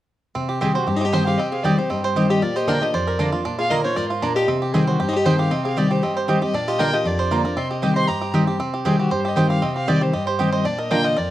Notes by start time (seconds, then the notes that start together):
0.35 C3 C4
0.49 G4
0.61 D#3 G3 C4 G4 G#4 D#5 G5
0.74 G#3 C4 F#4 G4 C5
0.87 G2 C4 G4
0.95 D#4 C5
1.01 G4 D#5
1.12 D#3 G3 C4 G4 C5 D#5 G5
1.26 G4 G#4 F5
1.38 C3 C4 G4 D#5
1.51 G#4 F5
1.63 D#3 G3 C4 G4 D5 D#5 G5
1.77 C4 D#4 G4 C5
1.90 G2 C4 G4 D#5
2.03 G4 C5, muted resonator guitar played with a steel bar stroke
2.15 D#3 G3 C4 D#4 G4 C5 D#5 G5
2.29 G4 D#5
2.42 A#2 F4 A#4 D5
2.56 G4 C5 D#5
2.67 D3 A#3 D4 F4 A#4 D5 G5 A#5
2.81 D4 F4 G4 A#4 D#5
2.93 F2 F4 C5 D5
3.07 A#4
3.19 D3 A#3 D4 F4 D5 A#5
3.32 D4 F4
3.45 A#2 D4
3.59 F4 G#4 F5
3.70 D3 A#3 D4 F4 A#4 D5 D#5 A#5
3.84 D4 D#4 F4 C5 C#5
3.96 G#2 F4 A#4 D5
4.09 F4, muted resonator guitar played with a steel bar stroke
4.21 A#2 A#3 D4 F4 A#4 D5 A#5
4.35 G4 A#4 D#5
4.48 C3 C4
4.62 G4
4.73 D#3 G3 C4 G4 G#4 D#5 G5
4.87 G#3 F#4 C5
4.99 G2 C4 G4
5.07 D#4 C5
5.13 G4 D#5
5.25 D#3 G3 C4 G4 C5 D#5 G5
5.38 G4 G#4 F5
5.51 C3 C4 G4 D#5
5.65 G4 G#4 F5
5.76 D#3 G3 C4 G4 D5 D#5 G5
5.90 D#4 G4 C5
6.03 C4 G4 D#5
6.16 G4 C5, muted resonator guitar played with a steel bar stroke
6.28 D#3 G3 C4 D#4 G4 C5 D#5 G5
6.41 C4 G4 D#5
6.54 A#2 D4 F4 D5
6.68 F4 G4 D#5
6.79 D3 A#3 D4 F4 A#4 D5 G5 A#5
6.92 D4 F4 G4 D#5
7.05 F2 D4 F4 D5
7.19 C5
7.31 D3 A#3 D4 F4 D5 A#5
7.44 D4 F4 A#4
7.57 C3 C4 D#5 C6
7.71 G4 D#5, muted resonator guitar played with a steel bar stroke
7.82 D#3 G3 C4 G4 C5 D#5 G5
7.95 C5 D#5 C6
8.08 G2 G4 D#5 A#5
8.21 G4
8.33 D#3 G3 C4 G4 D#5 G5
8.47 C4 G4
8.60 C3 C4
8.74 G4
8.85 D#3 G3 C4 G4 G#4 D#5 G5
8.99 F#4 G4
9.11 G2 G4 C5
9.20 C5
9.25 G4 D#5
9.36 D#3 G3 C4 G4 C5 D#5 G5
9.49 G4 F5
9.62 C3 C4 D#5
9.76 G4 F5
9.88 D#3 G3 C4 G4 D5 D#5 G5
10.01 G4 C5
10.13 G2 G4 D#5
10.27 G4 C5
10.39 D#3 G3 C4 G4 C5 D#5 G5
10.52 C5 D#5
10.65 A#2 D4 D5
10.78 A#4 D#5
10.90 D3 A#3 D4 F4 D5 G5 A#5
11.04 F4 D#5
11.17 F2 A#4 D5